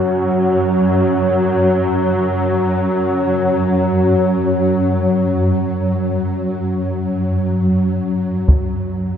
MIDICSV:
0, 0, Header, 1, 4, 480
1, 0, Start_track
1, 0, Tempo, 500000
1, 8806, End_track
2, 0, Start_track
2, 0, Title_t, "Ambient pad"
2, 0, Program_c, 0, 92
2, 0, Note_on_c, 0, 61, 80
2, 0, Note_on_c, 0, 66, 73
2, 0, Note_on_c, 0, 73, 75
2, 8137, Note_off_c, 0, 61, 0
2, 8149, Note_on_c, 0, 61, 72
2, 8154, Note_off_c, 0, 73, 0
2, 8158, Note_off_c, 0, 66, 0
2, 8806, Note_off_c, 0, 61, 0
2, 8806, End_track
3, 0, Start_track
3, 0, Title_t, "Synth drone"
3, 0, Program_c, 1, 95
3, 0, Note_on_c, 1, 42, 76
3, 0, Note_on_c, 1, 54, 71
3, 8113, Note_off_c, 1, 42, 0
3, 8124, Note_on_c, 1, 42, 75
3, 8126, Note_off_c, 1, 54, 0
3, 8138, Note_on_c, 1, 54, 76
3, 8806, Note_off_c, 1, 42, 0
3, 8806, Note_off_c, 1, 54, 0
3, 8806, End_track
4, 0, Start_track
4, 0, Title_t, "Taiko and cinematic ensemble drums"
4, 8142, Note_on_c, 9, 41, 65
4, 8238, Note_off_c, 9, 41, 0
4, 8806, End_track
0, 0, End_of_file